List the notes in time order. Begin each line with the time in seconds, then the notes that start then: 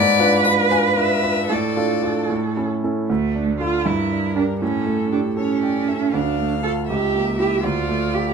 Already playing: G#2 B4 D5
0.19 D4 F4 B4
0.45 D4 F4 B4 B5
0.71 D4 F4 B4 G#5
0.97 D4 F4 B4 E5
1.23 D4 F4 B4
1.49 A2 A4 D5
1.76 D4 F4 A4
2.03 D4 F4 A4
2.30 A2
2.57 C#4 E4 A4
2.84 C#4 E4 A4
3.08 D2 A3
3.35 D4
3.60 F4 A4
3.86 G2 E4 A#4
4.12 D4
4.35 D4 G4 A#4
4.61 A2 C#4 A4
4.87 A3
5.12 D4 G4
5.37 C#4 A4 C#5
5.63 D5 G5
5.88 A4 E5
6.12 D2 D4 F5
6.40 A3
6.63 F4 A4
6.88 C#2 G4 E5
7.15 A#3
7.38 E4 G4
7.63 D2 F4 D5
7.89 A3
8.13 F4 G4